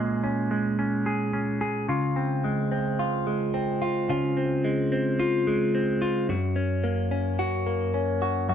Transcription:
Already playing: A#2 G#3 C#4 G#4
0.24 C#4
0.51 G#3
0.79 C#4
1.06 G#4
1.33 C#4
1.61 G#4
1.89 C#3 F4
2.16 C4
2.44 G#3
2.72 C4
2.99 F4
3.27 G#3
3.54 C4
3.82 F4
4.09 C#3 F4
4.37 C4
4.64 G#3
4.92 C4
5.20 F4
5.47 G#3
5.75 C4
6.02 F4
6.29 F#2 F#4
6.56 C#4
6.84 A#3
7.11 C#4
7.39 F#4
7.66 A#3
7.94 C#4
8.22 F#4
8.49 F#2 F#4

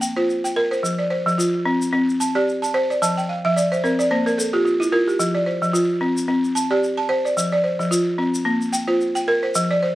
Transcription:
0.01 G5, shaker
0.16 F4 C5
0.30 shaker
0.44 G5, shaker
0.56 A#4
0.71 C5, shaker
0.83 F3, shaker
0.99 D5
1.10 C5
1.26 F3, shaker
1.38 F4, shaker
1.66 C4
1.82 shaker
1.93 C4
2.09 shaker
2.20 A5, shaker
2.35 G4 D5
2.49 shaker
2.62 A5, shaker
2.74 C5
2.90 D5, shaker
3.02 F3 A5, shaker
3.17 G5, shaker
3.29 F5
3.45 F3 E5
3.56 D5, shaker
3.72 C5, shaker
3.84 C4 A#4, shaker
3.99 D5, shaker
4.11 A#3 C5
4.26 A#4, shaker
4.38 A4, shaker
4.53 F4 G4
4.65 F4, shaker
4.80 E4, shaker
4.92 F4 A#4
5.08 G4, shaker
5.19 F3, shaker
5.35 D5
5.46 C5
5.62 F3, shaker
5.73 F4, shaker
6.01 C4
6.17 shaker
6.28 C4
6.44 shaker
6.55 A5, shaker
6.71 G4 D5
6.84 shaker
6.97 A5
7.09 C5
7.25 D5, shaker
7.37 F3, shaker
7.52 D5
7.64 C5
7.79 F3, shaker
7.91 F4, shaker
8.18 C4
8.35 shaker
8.45 A#3
8.62 shaker
8.73 G5, shaker
8.88 F4 C5
9.01 shaker
9.15 G5, shaker
9.28 A#4
9.43 C5
9.55 F3, shaker
9.71 D5
9.83 C5

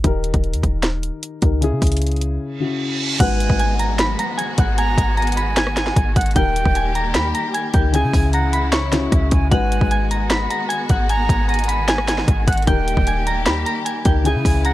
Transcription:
0.04 D#1 D#3 D#4 G4 A#4, kick, closed hi-hat
0.24 closed hi-hat
0.34 D#1, kick, closed hi-hat
0.44 closed hi-hat
0.54 D#2, closed hi-hat
0.63 D#1, kick, closed hi-hat
0.83 snare, closed hi-hat
1.03 closed hi-hat
1.23 closed hi-hat
1.42 C#2 D#3 D#4 G4 A#4, kick, closed hi-hat
1.61 C#3 C#4 E4 G#4, closed hi-hat
1.72 C#3
1.82 C#2, kick, closed hi-hat, open hi-hat
1.87 closed hi-hat
1.92 closed hi-hat
1.97 closed hi-hat
2.02 closed hi-hat
2.07 closed hi-hat
2.11 closed hi-hat
2.16 closed hi-hat
2.21 closed hi-hat
2.41 reverse cymbal
2.60 C#3 C#4 E4 F#4
3.19 G#1 D#3 G#3 B3 D#4 F#4 B4 F#5 G#5 F#6, kick, closed hi-hat, crash, downlifter
3.40 closed hi-hat
3.50 G#1, kick
3.59 G#5 G#6, closed hi-hat
3.79 A#5 A#6, closed hi-hat
3.99 B5 B6, snare, closed hi-hat
4.19 A#5 A#6, closed hi-hat
4.38 G#5 G#6, closed hi-hat
4.58 G#1 F#5 F#6, kick, closed hi-hat
4.78 G#5 A#5 G#6, closed hi-hat
4.98 G#1, kick, closed hi-hat
5.17 G#5 A#5 A#6, closed hi-hat
5.22 closed hi-hat
5.27 closed hi-hat
5.32 closed hi-hat
5.37 B5 B6, closed hi-hat
5.56 G#5 G#6, snare, closed hi-hat
5.67 cross-stick
5.77 G#5 G#6, snare, closed hi-hat
5.87 snare
5.96 G#1, kick, closed hi-hat
6.16 G#1 F#5 F#6, kick, closed hi-hat
6.21 closed hi-hat
6.26 closed hi-hat
6.31 closed hi-hat
6.35 D#1 D#3 G3 A#3 D#4 G4 A#4 G5 G6, kick, closed hi-hat
6.56 closed hi-hat
6.65 D#1, kick
6.75 G#5 G#6, closed hi-hat
6.95 A#5 A#6, closed hi-hat
7.14 D#2 B5 B6, snare, closed hi-hat
7.34 A#5 A#6, closed hi-hat
7.54 G#5 G#6, closed hi-hat
7.73 C#2 D#3 D#4 G4 A#4 G5 G6, kick, closed hi-hat
7.93 C#3 E3 G#3 C#4 E4 G#4 G#5 G#6, closed hi-hat
8.04 C#3
8.13 C#2, kick, open hi-hat
8.33 F#5 A#5 A#6, closed hi-hat
8.53 B5 B6, closed hi-hat
8.72 C#5 C#6, snare, closed hi-hat
8.91 C#3 C#4 E4 F#4, snare, closed hi-hat
9.12 C#2 E5, kick, cross-stick, closed hi-hat
9.31 C#2 G#5, kick, closed hi-hat
9.51 G#1 D#3 G#3 B3 D#4 F#4 B4 F#5 G#5 F#6, kick, closed hi-hat
9.72 closed hi-hat
9.81 G#1, kick
9.91 G#5 G#6, closed hi-hat
10.11 A#5 A#6, closed hi-hat
10.30 B5 B6, snare, closed hi-hat
10.50 A#5 A#6, closed hi-hat
10.69 G#5 G#6, closed hi-hat
10.89 G#1 F#5 F#6, kick, closed hi-hat
11.09 G#5 A#5 G#6, closed hi-hat
11.29 G#1, kick, closed hi-hat
11.48 G#5 A#5 A#6, closed hi-hat
11.54 closed hi-hat
11.59 closed hi-hat
11.64 closed hi-hat
11.68 B5 B6, closed hi-hat
11.88 G#5 G#6, snare, closed hi-hat
11.98 cross-stick
12.08 G#5 G#6, snare, closed hi-hat
12.18 snare
12.28 G#1, kick, closed hi-hat
12.47 G#1 F#5 F#6, kick, closed hi-hat
12.53 closed hi-hat
12.57 closed hi-hat
12.62 closed hi-hat
12.67 D#1 D#3 G3 A#3 D#4 G4 A#4 G5 G6, kick, closed hi-hat
12.88 closed hi-hat
12.97 D#1, kick
13.07 G#5 G#6, closed hi-hat
13.27 A#5 A#6, closed hi-hat
13.46 D#2 B5 B6, snare, closed hi-hat
13.66 A#5 A#6, closed hi-hat
13.85 G#5 G#6, closed hi-hat
14.05 C#2 D#3 D#4 G4 A#4 G5 G6, kick, closed hi-hat
14.24 C#3 E3 G#3 C#4 E4 G#4 G#5 G#6, closed hi-hat
14.35 C#3
14.45 C#2, kick, open hi-hat
14.65 F#5 A#5 A#6, closed hi-hat

